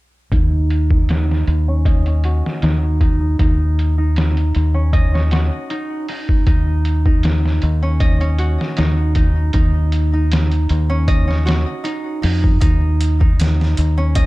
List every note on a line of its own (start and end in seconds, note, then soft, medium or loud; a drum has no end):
0.32 1.44 D#2 medium
0.32 0.91 D#4 medium
0.32 kick medium
0.32 closed hi-hat medium
0.70 closed hi-hat medium
0.91 2.62 D#4 medium
0.91 kick medium
1.09 snare loud
1.09 closed hi-hat medium
1.31 snare soft
1.47 2.41 D#2 medium
1.47 closed hi-hat medium
1.68 2.06 C#4 medium
1.85 3.64 D#5 medium
1.85 kick medium
1.85 closed hi-hat medium
2.06 4.74 C#4 medium
2.06 closed hi-hat soft
2.24 4.68 F#4 medium
2.24 closed hi-hat medium
2.46 snare soft
2.62 3.36 D#2 medium
2.62 3.01 D#4 medium
2.62 snare medium
2.62 closed hi-hat medium
3.01 3.39 D#4 medium
3.01 kick medium
3.01 closed hi-hat medium
3.39 4.51 D#2 medium
3.39 3.98 D#4 medium
3.39 kick medium
3.39 closed hi-hat medium
3.79 closed hi-hat medium
3.98 5.70 D#4 medium
4.16 snare loud
4.16 closed hi-hat medium
4.37 closed hi-hat soft
4.55 5.49 D#2 medium
4.55 closed hi-hat medium
4.74 5.14 C#4 medium
4.93 6.71 D#5 medium
4.93 kick medium
4.93 closed hi-hat medium
5.14 7.82 C#4 medium
5.14 snare soft
5.31 7.75 F#4 medium
5.31 snare loud
5.31 closed hi-hat medium
5.70 6.08 D#4 medium
5.70 closed hi-hat medium
6.08 6.46 D#4 medium
6.08 open hi-hat medium
6.29 kick medium
6.47 7.59 D#2 medium
6.47 7.05 D#4 medium
6.47 kick medium
6.47 closed hi-hat medium
6.85 closed hi-hat medium
7.05 8.77 D#4 medium
7.05 kick medium
7.23 snare loud
7.23 closed hi-hat medium
7.46 snare soft
7.62 8.56 D#2 loud
7.62 closed hi-hat medium
7.82 8.20 C#4 medium
8.00 9.78 D#5 medium
8.00 kick loud
8.00 closed hi-hat medium
8.20 10.89 C#4 medium
8.20 closed hi-hat soft
8.39 10.82 F#4 medium
8.39 closed hi-hat medium
8.61 snare soft
8.77 9.52 D#2 medium
8.77 9.15 D#4 medium
8.77 snare loud
8.77 closed hi-hat medium
9.15 9.54 D#4 medium
9.15 kick medium
9.15 closed hi-hat medium
9.53 10.66 D#2 medium
9.53 10.13 D#4 medium
9.53 kick loud
9.53 closed hi-hat medium
9.92 closed hi-hat medium
10.13 11.83 D#4 medium
10.32 snare loud
10.32 closed hi-hat medium
10.52 closed hi-hat soft
10.69 11.64 D#2 loud
10.69 closed hi-hat medium
10.90 11.27 C#4 medium
11.08 12.86 D#5 medium
11.08 kick loud
11.08 closed hi-hat medium
11.27 13.97 C#4 medium
11.27 snare soft
11.45 13.89 F#4 medium
11.45 snare loud
11.45 closed hi-hat medium
11.84 12.22 D#4 medium
11.84 closed hi-hat medium
12.22 12.58 F2 medium
12.22 12.60 D#4 medium
12.22 open hi-hat medium
12.44 kick medium
12.60 13.74 D#2 medium
12.60 13.20 D#4 medium
12.60 kick loud
12.60 closed hi-hat medium
13.01 closed hi-hat medium
13.20 14.26 D#4 medium
13.20 kick medium
13.40 snare loud
13.40 closed hi-hat medium
13.61 snare soft
13.77 14.26 D#2 medium
13.77 closed hi-hat medium
13.97 14.26 C#4 medium
14.15 14.26 D#5 medium
14.15 kick loud
14.15 closed hi-hat medium